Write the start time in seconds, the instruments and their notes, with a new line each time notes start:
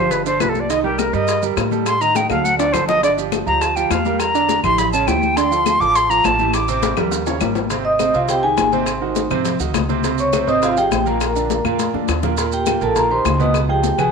Already playing: upright bass G1, grand piano F3 F4 G4, flute C5
0.11 flute B4, high bongo, high conga, low conga, maracas
0.26 grand piano D3 D4 D5, flute C5, high bongo, high conga, maracas
0.40 upright bass C2, grand piano F3 F4 G4, flute B4, high bongo, low bongo, high conga, claves, maracas
0.49 flute A4
0.55 high bongo, high conga, maracas
0.60 flute D5
0.69 grand piano D#3 D#4 D#5, flute D#5, high bongo, maracas
0.84 grand piano G3 G4 A#4, flute G4, high conga
0.99 flute A#4, high bongo, high conga, claves, maracas
1.13 upright bass G2, grand piano G3 G4 A#4, flute D#5, high conga, maracas
1.28 high bongo, high conga, maracas
1.42 grand piano G3 G4 A#4, high conga, maracas
1.57 upright bass A2, high bongo, low bongo, high conga, claves, maracas
1.71 grand piano G3 G4 A4, high conga, maracas
1.86 flute C6, high bongo, high conga, claves, maracas
2.01 grand piano D#3 D#4 D#5, flute A#5, high conga, maracas
2.15 flute G5, high bongo, high conga, maracas
2.30 upright bass D2, grand piano F#3 F#4 A4, flute F5, high bongo, high conga, claves, maracas
2.44 flute F#5, high conga, maracas
2.58 grand piano D3 D4 D5, flute D5, low bongo, maracas
2.73 upright bass G1, grand piano F#3 F#4 A4, flute C5, low bongo, low conga, claves, maracas
2.88 flute D#5, low bongo, low conga, maracas
3.03 grand piano D3 D4 D5, flute D5, high bongo, maracas
3.17 grand piano F3 F4 G4, high conga, maracas
3.32 high bongo, high conga, claves, maracas
3.47 upright bass D2, grand piano F3 F4 G4, flute A#5, high conga, maracas
3.61 flute A5, high bongo, high conga, maracas
3.76 grand piano F3 F4 G4, flute G5, high conga, maracas
3.90 upright bass E2, flute F5, high bongo, low bongo, high conga, claves, maracas
4.05 grand piano G3 G4 A#4, high conga, maracas
4.20 flute A#5, high bongo, high conga, claves, maracas
4.34 grand piano D3 D4 D5, high conga, maracas
4.49 high bongo, high conga, maracas
4.63 upright bass A1, grand piano E3 E4 G4, flute C6, high bongo, high conga, low conga, claves, maracas
4.78 flute B5, high bongo, high conga, low conga, maracas
4.92 grand piano C#3 C#4 C#5, flute A5, high bongo, high conga, maracas
5.07 upright bass D2, grand piano E3 E4 G4, flute G5, high bongo, low bongo, high conga, claves, maracas
5.22 high bongo, high conga, maracas
5.37 grand piano D3 D4 D5, flute C6, high bongo, high conga, maracas
5.51 grand piano F3 F4 A4, high conga, maracas
5.66 high bongo, high conga, claves, maracas
5.80 upright bass A1, grand piano F3 F4 A4, flute D6, high conga, maracas
5.95 flute C6, high bongo, high conga, maracas
6.10 grand piano F3 F4 A4, flute A#5, high conga, maracas
6.24 upright bass A1, flute A5, high bongo, low bongo, high conga, claves, maracas
6.39 grand piano E3 E4 G4, high conga, maracas
6.53 flute D6, high bongo, high conga, claves, maracas
6.68 grand piano C3 C4 C5, high conga, maracas
6.83 high bongo, high conga, maracas
6.97 upright bass D#2, grand piano G3 G4 A#4, high bongo, high conga, low conga, claves, maracas
7.11 high bongo, maracas
7.26 grand piano C#3 C#4 C#5, low bongo, high conga, maracas
7.41 upright bass G#1, grand piano G3 G4 A#4, low bongo, high conga, claves, maracas
7.55 low bongo, high conga, maracas
7.70 grand piano C3 C4 C5, high bongo, high conga, maracas
7.85 vibraphone D#5 D#6, high conga
7.99 grand piano C3 C4 C5, high bongo, high conga, claves, maracas
8.14 upright bass C2, grand piano C3 C4 C5, vibraphone F4 F5, high conga, maracas
8.28 grand piano C3 C4 C5, vibraphone G4 G5, high bongo, high conga, maracas
8.43 grand piano D#3 D#4 G4, vibraphone G#4 G#5, high conga
8.57 upright bass G#1, high bongo, low bongo, high conga, claves, maracas
8.72 grand piano C3 C4 C5, vibraphone C5 C6, high conga, maracas
8.86 high bongo, high conga, claves, maracas
9.01 grand piano D#3 D#4 F#4, high conga
9.16 high bongo, high conga, maracas
9.30 upright bass G#2, grand piano C3 C4 C5, high bongo, high conga, low conga, claves, maracas
9.45 high bongo, high conga, low conga, maracas
9.60 upright bass D2, grand piano D#3 D#4 F#4, high bongo, maracas
9.74 upright bass C#2, high bongo, low bongo, high conga, claves, maracas
9.89 grand piano C3 C4 C5, high bongo, high conga, maracas
10.04 grand piano C3 C4 C5, high bongo, high conga, maracas
10.18 vibraphone C#5 C#6, high conga, maracas
10.33 grand piano C3 C4 C5, high bongo, high conga, claves, maracas
10.47 upright bass G#1, grand piano C3 C4 C5, vibraphone D#5 D#6, maracas
10.62 grand piano C3 C4 C5, vibraphone F4 F5, high bongo, high conga, maracas
10.77 grand piano F3 F4 G#4, vibraphone G4 G5, high conga, maracas
10.91 upright bass A#1, high bongo, low bongo, high conga, claves, maracas
11.06 grand piano A#2 A#3 A#4, vibraphone A#4 A#5, maracas
11.21 high bongo, high conga, claves, maracas
11.35 grand piano D3 D4 F4, high conga, maracas
11.50 high bongo, high conga, maracas
11.64 upright bass F2, grand piano A#2 A#3 A#4, high bongo, high conga, claves, maracas
11.79 high bongo, high conga, maracas
11.94 upright bass F2, grand piano D3 D4 F4, high bongo, high conga
12.08 upright bass D#2, high bongo, low bongo, claves, maracas
12.23 grand piano A#2 A#3 A#4, high bongo, low conga, maracas
12.37 grand piano A#2 A#3 A#4, high bongo, high conga, maracas
12.52 vibraphone G4 G5, high conga, maracas
12.66 grand piano A#2 A#3 A#4, high bongo, high conga, claves, maracas
12.81 upright bass A#1, grand piano A#2 A#3 A#4, vibraphone A4 A5, high conga, maracas
12.96 grand piano A#2 A#3 A#4, vibraphone A#4 A#5, high bongo, high conga, maracas
13.10 grand piano D#3 D#4 G4, vibraphone C5 C6, high conga
13.25 upright bass C#2, high bongo, low bongo, high conga, claves, maracas
13.39 grand piano B2 B3 B4, vibraphone D#5 D#6, high conga, maracas
13.54 high bongo, high conga, claves, maracas
13.68 grand piano F3 F4 G#4, vibraphone G4 G5, high conga
13.83 high bongo, high conga, maracas
13.98 upright bass C#2, grand piano B2 B3 B4, vibraphone G#4 G#5, high bongo, high conga, low conga, claves, maracas